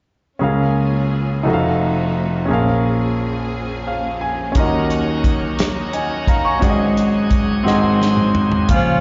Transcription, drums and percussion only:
4.55 kick medium
4.55 closed hi-hat medium
4.90 closed hi-hat soft
5.24 kick medium
5.24 closed hi-hat soft
5.59 snare medium
5.59 closed hi-hat medium
5.93 closed hi-hat soft
6.27 kick medium
6.27 closed hi-hat soft
6.62 kick medium
6.62 closed hi-hat medium
6.97 closed hi-hat soft
7.31 kick medium
7.31 closed hi-hat soft
7.67 snare soft
8.02 snare soft
8.17 mid tom soft
8.35 floor tom medium
8.52 floor tom medium
8.69 kick medium
8.69 closed hi-hat medium

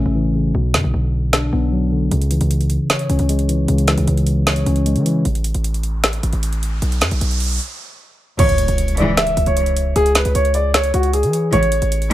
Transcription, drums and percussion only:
0.74 snare medium
1.33 snare loud
2.11 closed hi-hat medium
2.22 closed hi-hat medium
2.31 closed hi-hat medium
2.41 closed hi-hat medium
2.51 closed hi-hat medium
2.61 closed hi-hat medium
2.70 closed hi-hat medium
2.90 snare loud
2.90 closed hi-hat medium
2.99 closed hi-hat medium
3.10 closed hi-hat medium
3.19 closed hi-hat medium
3.29 closed hi-hat medium
3.39 closed hi-hat medium
3.49 closed hi-hat medium
3.68 closed hi-hat medium
3.78 closed hi-hat medium
3.88 snare medium
3.88 closed hi-hat medium
3.98 closed hi-hat medium
4.08 closed hi-hat medium
4.17 closed hi-hat medium
4.27 closed hi-hat medium
4.47 snare loud
4.47 closed hi-hat medium
4.56 closed hi-hat medium
4.66 closed hi-hat medium
4.76 closed hi-hat medium
4.86 closed hi-hat medium
4.96 closed hi-hat medium
5.06 closed hi-hat medium
5.25 closed hi-hat medium
5.35 closed hi-hat medium
5.44 closed hi-hat medium
5.54 closed hi-hat medium
5.64 closed hi-hat medium
5.74 closed hi-hat medium
5.83 closed hi-hat medium
6.04 snare loud
6.04 closed hi-hat medium
6.13 closed hi-hat medium
6.23 closed hi-hat medium
6.33 closed hi-hat medium
6.43 closed hi-hat medium
6.53 closed hi-hat medium
6.63 closed hi-hat medium
6.82 closed hi-hat medium
6.92 closed hi-hat medium
7.01 snare medium
7.01 closed hi-hat medium
7.11 closed hi-hat medium
7.21 closed hi-hat medium
7.31 closed hi-hat soft
7.40 open hi-hat medium
8.39 closed hi-hat medium
8.39 crash loud
8.49 closed hi-hat medium
8.58 closed hi-hat medium
8.68 closed hi-hat medium
8.78 closed hi-hat medium
8.88 closed hi-hat medium
8.97 closed hi-hat medium
9.17 snare loud
9.17 closed hi-hat medium
9.27 closed hi-hat medium
9.37 closed hi-hat medium
9.46 closed hi-hat medium
9.57 closed hi-hat medium
9.66 closed hi-hat medium
9.77 closed hi-hat medium
9.96 closed hi-hat medium
10.06 closed hi-hat medium
10.15 snare medium
10.15 closed hi-hat medium
10.25 closed hi-hat medium
10.35 closed hi-hat medium
10.45 closed hi-hat medium
10.54 closed hi-hat medium
10.74 snare loud
10.74 closed hi-hat medium
10.84 closed hi-hat medium
10.94 closed hi-hat medium
11.03 closed hi-hat medium
11.13 closed hi-hat medium
11.23 closed hi-hat medium
11.33 closed hi-hat medium
11.53 closed hi-hat medium
11.63 closed hi-hat medium
11.72 closed hi-hat medium
11.82 closed hi-hat medium
11.92 closed hi-hat medium
12.02 closed hi-hat medium

